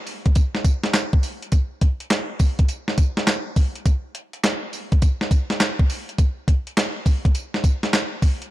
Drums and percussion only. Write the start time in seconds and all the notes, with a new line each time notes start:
0.07 open hi-hat, tambourine
0.26 kick, closed hi-hat
0.35 kick, closed hi-hat, tambourine
0.55 snare
0.64 kick, closed hi-hat, tambourine
0.84 snare, closed hi-hat
0.94 snare, clap, closed hi-hat, tambourine
1.13 kick
1.23 open hi-hat, tambourine
1.42 closed hi-hat
1.52 kick, closed hi-hat, tambourine
1.81 kick, closed hi-hat
2.00 closed hi-hat
2.10 snare, clap, closed hi-hat, tambourine
2.39 kick, open hi-hat, tambourine
2.59 kick, closed hi-hat
2.68 closed hi-hat, tambourine
2.88 snare
2.98 kick, closed hi-hat, tambourine
3.17 snare, closed hi-hat
3.27 snare, clap, closed hi-hat, tambourine
3.56 kick, open hi-hat, tambourine
3.75 closed hi-hat
3.86 kick, closed hi-hat, tambourine
4.15 closed hi-hat
4.33 closed hi-hat
4.43 snare, clap, closed hi-hat, tambourine
4.73 open hi-hat, tambourine
4.92 kick, closed hi-hat
5.02 kick, closed hi-hat, tambourine
5.21 snare
5.31 kick, closed hi-hat, tambourine
5.50 snare, closed hi-hat
5.60 snare, clap, closed hi-hat, tambourine
5.79 kick
5.90 open hi-hat, tambourine
6.09 closed hi-hat
6.18 kick, closed hi-hat, tambourine
6.48 kick, closed hi-hat
6.67 closed hi-hat
6.77 snare, clap, closed hi-hat, tambourine
7.06 kick, open hi-hat, tambourine
7.25 kick, closed hi-hat
7.35 closed hi-hat, tambourine
7.54 snare
7.64 kick, closed hi-hat, tambourine
7.83 snare, closed hi-hat
7.93 snare, clap, closed hi-hat, tambourine
8.22 kick, open hi-hat, tambourine
8.42 closed hi-hat